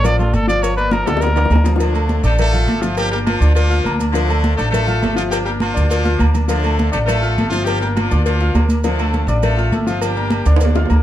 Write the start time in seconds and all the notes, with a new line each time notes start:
Already playing: A1
0.04 F3 F4 D5 F5, cowbell, high conga, low conga, low agogo, maracas
0.18 A3 F4 A4 D5, high conga, low conga, maracas
0.33 G1 A4, cowbell, high conga, low agogo, maracas
0.47 F3 F4 D5 F5, high conga, maracas
0.63 C#5, cowbell, high conga, low agogo, maracas
0.77 A#3 A#4 B4 D5, high conga, maracas
0.91 F3 F4 A#4 F5, cowbell, high conga, low agogo, maracas
1.05 D2 A#3 A4 A#4 D5, high bongo, high conga, high timbale, maracas
1.17 cowbell, high bongo
1.21 A#4, high conga, high timbale, low agogo, maracas
1.27 high bongo
1.35 A#3 A#4 D5, cowbell, low bongo, high conga, high timbale, maracas
1.45 low bongo
1.50 D2, cowbell, high conga, low timbale, low agogo, maracas
1.55 low bongo
1.64 F3 F4 F5, cowbell, low bongo, high conga, low timbale, low agogo, maracas
1.76 F3 F4 F5, low bongo
1.80 D3 F3 A3 D4, cowbell, low agogo, maracas
1.93 A3 A4 A5, high conga, low agogo, maracas
2.09 cowbell, high conga, maracas
2.23 A1 A3 D4 A4 D5 D6, low agogo, maracas
2.38 A3 E4 F4 A4, cowbell, high conga, low conga, low agogo, maracas
2.53 F4 F5 F6, high conga, low conga, maracas
2.67 G1 A3 A4 A5, cowbell, high conga, low agogo, maracas
2.81 F3 F4 F5, high conga, maracas
2.97 G3 A#3 D4 G4, cowbell, high conga, low agogo, maracas
3.11 G3 A#3 G4 A#4 A#5, high conga, maracas
3.26 F3 A#3 D4 F4, cowbell, high conga, low agogo, maracas
3.40 D2 D4 D5 D6, high conga, maracas
3.54 F3 A#3 D4 F4, cowbell, high conga, low agogo, maracas
3.70 F4 F5 F6, cowbell, high conga, maracas
3.84 D2 A#3 A#4 A#5, cowbell, high conga, low agogo, maracas
4.00 cowbell, high conga, low agogo, maracas
4.11 D3 F3 A3 D4 F4 F5, cowbell, low agogo, maracas
4.28 A3 A4 A5, high conga, low agogo, maracas
4.44 cowbell, high conga, maracas
4.55 A1 A3 D4 A4 D5 D6, high conga, low agogo, maracas
4.70 A3 E4 F4 A4, cowbell, high conga, low conga
4.74 low agogo, maracas
4.87 F4 F5 F6, high conga, low conga, maracas
5.02 G1 A3 A4 A5, cowbell, high conga, low timbale, low agogo, maracas
5.15 F3 F4 F5, high conga, maracas
5.30 G3 A#3 D4 G4, cowbell, high conga, low agogo, maracas
5.44 G3 A#3 G4 A#4 A#5, high conga, maracas
5.60 F3 A#3 D4 F4, cowbell, high conga, low agogo, maracas
5.74 D2 D4 D5 D6, high conga, maracas
5.88 F3 A#3 D4 F4, cowbell, high conga, low agogo, maracas
6.04 F4 F5 F6, cowbell, high conga, maracas
6.19 D2 A#3 A#4 A#5, cowbell, high conga, low agogo, maracas
6.34 cowbell, low conga, low agogo, maracas
6.48 D3 F3 A3 D4 F4 F5, cowbell, high conga, low agogo, maracas
6.64 A3 A4 A5, high conga, low agogo, maracas
6.79 cowbell, high conga, maracas
6.91 A1 A3 D4 A4 D5 D6, low agogo, maracas
7.05 A3 E4 F4 A4, cowbell, low agogo
7.09 high conga, low conga, maracas
7.22 F4 F5 F6, high conga, maracas
7.38 G1 A3 A4 A5, cowbell, high conga, low agogo, maracas
7.49 F3 F4 F5, high conga, maracas
7.64 G3 A#3 D4 G4, cowbell, high conga, low agogo, maracas
7.80 G3 A#3 G4 A#4 A#5, high conga, maracas
7.95 F3 A#3 D4 F4, cowbell, high conga, low agogo, maracas
8.11 D2 D4 D5 D6, high conga, maracas
8.23 F3 A#3 D4 F4, cowbell, high conga, low agogo, maracas
8.40 F4 F5 F6, cowbell, high conga, maracas
8.54 D2 A#3 A#4 A#5, cowbell, high conga, low timbale, low agogo, maracas
8.69 cowbell, high conga, low agogo, maracas
8.84 D3 F3 A3 D4 F4 F5, cowbell, high conga, low agogo, maracas
8.99 A3 A4 A5, high conga, low agogo, maracas
9.13 cowbell, high conga, maracas
9.27 A1 D4 D5 D6, high conga, low agogo, maracas
9.42 A3 E4 F4 A4, cowbell, high conga, low conga, low agogo, maracas
9.57 F4 F5 F6, high conga, maracas
9.72 G1 A3 A4 A5, cowbell, high conga, low agogo, maracas
9.86 F3 F4 F5, high conga, maracas
10.01 G3 A#3 D4 G4, cowbell, high conga, low agogo, maracas
10.16 A#3 A#4 A#5, high conga, maracas
10.30 cowbell, high conga, low agogo, maracas
10.46 D2 D3 F3 A#3 D4 D5 D6, high timbale, maracas
10.56 high timbale
10.61 cowbell, high conga, low agogo, maracas
10.65 low timbale
10.75 F4 F5 F6, cowbell, high bongo, high conga, high timbale, maracas
10.86 A#3 A#4, low timbale
10.90 D2 A#5, cowbell, low bongo, high conga, low agogo, maracas